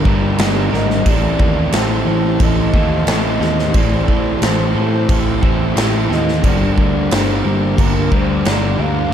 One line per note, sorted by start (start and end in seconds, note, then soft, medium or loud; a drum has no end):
0.00 0.39 G2 medium
0.00 0.40 D3 medium
0.00 9.14 G4 medium
0.00 1.03 A#4 medium
0.00 1.04 G5 medium
0.00 1.03 A#5 medium
0.05 0.35 G1 medium
0.05 0.38 G2 medium
0.05 0.38 D3 medium
0.05 0.39 G3 medium
0.05 0.38 G3 medium
0.05 0.39 A#3 medium
0.05 0.40 D4 medium
0.05 0.41 A#4 medium
0.05 kick medium
0.38 0.68 G1 loud
0.38 1.04 G2 medium
0.38 1.05 G2 medium
0.38 1.05 D3 medium
0.38 0.75 G3 medium
0.38 1.07 G3 medium
0.38 0.73 A#3 medium
0.38 0.72 D4 medium
0.38 0.71 A#4 loud
0.38 snare loud
0.38 crash medium
0.72 1.02 G#1 medium
0.72 1.06 G3 medium
0.72 1.05 A#3 medium
0.72 1.05 D4 medium
0.72 1.04 A#4 medium
0.72 1.10 D#5 loud
0.72 snare soft
0.90 snare soft
1.05 1.35 A1 medium
1.05 2.39 A2 loud
1.05 1.73 A2 loud
1.05 1.71 E3 loud
1.05 1.73 E3 loud
1.05 2.73 A3 loud
1.05 1.75 A3 loud
1.05 1.42 C4 loud
1.05 1.40 E4 loud
1.05 1.39 A4 loud
1.05 6.41 C5 medium
1.05 1.76 D5 loud
1.05 3.73 A5 medium
1.05 6.40 C6 loud
1.05 kick loud
1.05 crash medium
1.39 1.69 D#2 medium
1.39 1.73 C4 medium
1.39 1.73 E4 medium
1.39 1.75 A4 medium
1.39 kick medium
1.72 2.03 A1 medium
1.72 3.07 A2 medium
1.72 2.39 E3 medium
1.72 2.07 E3 medium
1.72 2.07 A3 medium
1.72 2.09 C4 medium
1.72 2.06 E4 medium
1.72 2.05 A4 medium
1.72 2.44 C5 medium
1.72 snare loud
1.72 crash medium
2.06 2.36 A1 medium
2.06 2.76 E3 medium
2.06 2.74 A3 medium
2.06 2.40 C4 medium
2.06 2.41 E4 medium
2.06 2.41 A4 medium
2.39 2.70 A1 medium
2.39 3.08 A2 loud
2.39 3.06 E3 medium
2.39 2.75 C4 loud
2.39 2.74 E4 medium
2.39 2.72 A4 loud
2.39 3.08 D#5 loud
2.39 kick loud
2.39 crash medium
2.73 3.03 D#2 medium
2.73 3.06 A2 medium
2.73 3.07 E3 medium
2.73 3.08 A3 medium
2.73 3.07 A3 medium
2.73 3.07 C4 medium
2.73 3.08 E4 medium
2.73 3.09 A4 medium
2.73 kick medium
3.07 3.37 A1 medium
3.07 3.73 A2 medium
3.07 3.74 A2 medium
3.07 3.73 E3 medium
3.07 3.75 E3 medium
3.07 3.74 A3 medium
3.07 3.75 A3 medium
3.07 3.42 C4 medium
3.07 3.41 E4 medium
3.07 3.39 A4 medium
3.07 3.77 D#5 loud
3.07 snare loud
3.07 crash medium
3.40 3.70 D#2 medium
3.40 3.74 C4 medium
3.40 3.75 E4 medium
3.40 3.75 A4 medium
3.40 snare soft
3.59 snare soft
3.73 4.34 A1 medium
3.73 4.42 A2 medium
3.73 4.41 A2 medium
3.73 4.40 E3 medium
3.73 4.42 E3 loud
3.73 5.42 A3 medium
3.73 4.42 A3 loud
3.73 4.09 C4 loud
3.73 4.08 E4 loud
3.73 4.07 A4 loud
3.73 4.45 D5 loud
3.73 6.42 G5 medium
3.73 kick loud
3.73 crash medium
4.08 4.41 C4 medium
4.08 4.42 E4 medium
4.08 4.43 A4 medium
4.08 kick medium
4.41 4.72 A1 medium
4.41 5.10 A2 medium
4.41 5.07 E3 medium
4.41 4.76 E3 medium
4.41 4.74 A3 medium
4.41 4.76 C4 medium
4.41 4.75 E4 medium
4.41 4.73 A4 medium
4.41 5.44 C5 medium
4.41 snare loud
4.41 crash medium
4.75 5.05 A2 medium
4.75 5.44 E3 medium
4.75 5.42 A3 medium
4.75 5.08 C4 medium
4.75 5.09 E4 medium
4.75 5.09 A4 medium
5.08 5.39 A1 medium
5.08 5.76 A2 medium
5.08 5.74 E3 medium
5.08 5.44 C4 medium
5.08 5.42 E4 medium
5.08 5.41 A4 loud
5.08 kick loud
5.08 crash medium
5.42 5.73 A1 medium
5.42 5.76 A2 medium
5.42 5.77 E3 medium
5.42 5.76 E3 medium
5.42 5.77 A3 medium
5.42 5.76 A3 medium
5.42 5.75 C4 medium
5.42 5.76 E4 medium
5.42 5.78 A4 medium
5.42 kick medium
5.75 6.06 A1 medium
5.75 6.42 A2 medium
5.75 6.42 E3 medium
5.75 6.43 E3 medium
5.75 6.43 A3 medium
5.75 6.11 C4 medium
5.75 6.09 E4 medium
5.75 6.08 A4 medium
5.75 snare loud
5.75 crash medium
6.09 6.40 D#2 medium
6.09 6.43 C4 medium
6.09 6.42 E4 medium
6.09 6.42 A4 medium
6.09 6.45 D#5 medium
6.09 snare soft
6.28 snare soft
6.42 6.73 G1 medium
6.42 7.77 G2 medium
6.42 7.11 G2 loud
6.42 7.11 D3 medium
6.42 6.79 G3 medium
6.42 6.78 A#3 medium
6.42 6.77 D4 loud
6.42 6.76 A#4 loud
6.42 7.13 D5 loud
6.42 9.14 F5 medium
6.42 9.14 A#5 medium
6.42 9.10 D6 medium
6.42 kick loud
6.42 crash medium
6.46 7.13 G3 loud
6.76 7.07 D2 medium
6.76 7.10 G3 medium
6.76 7.11 A#3 medium
6.76 7.12 D4 medium
6.76 7.13 A#4 medium
6.76 kick medium
7.10 7.41 G1 medium
7.10 8.46 G2 medium
7.10 7.45 D3 medium
7.10 7.47 G3 medium
7.10 7.44 G3 medium
7.10 7.46 A#3 medium
7.10 7.45 D4 medium
7.10 7.43 A#4 medium
7.10 7.81 C5 medium
7.10 snare loud
7.10 crash medium
7.44 7.75 G1 medium
7.44 8.13 D3 medium
7.44 8.12 G3 medium
7.44 7.78 G3 medium
7.44 7.78 A#3 medium
7.44 7.79 D4 medium
7.44 7.79 A#4 medium
7.77 8.08 G1 loud
7.77 8.45 G2 loud
7.77 8.46 D3 medium
7.77 8.14 G3 loud
7.77 8.12 A#3 loud
7.77 8.11 D4 medium
7.77 8.16 A#4 loud
7.77 8.10 A#4 loud
7.77 kick loud
7.77 crash medium
8.11 8.41 D2 medium
8.11 8.44 G2 medium
8.11 8.44 D3 medium
8.11 8.46 D3 medium
8.11 8.47 G3 medium
8.11 8.44 G3 medium
8.11 8.45 A#3 medium
8.11 8.45 D4 medium
8.11 8.46 A#4 medium
8.11 8.48 C5 medium
8.11 kick medium
8.45 8.75 G1 medium
8.45 9.11 G2 medium
8.45 9.10 G2 medium
8.45 9.11 D3 medium
8.45 8.81 G3 medium
8.45 9.13 G3 medium
8.45 8.79 A#3 medium
8.45 8.78 D4 medium
8.45 8.77 A#4 medium
8.45 8.81 D5 loud
8.45 snare loud
8.45 crash medium
8.78 9.08 D2 medium
8.78 9.12 G3 medium
8.78 9.12 A#3 medium
8.78 9.13 D4 medium
8.78 9.13 A#4 medium
8.78 9.14 F5 loud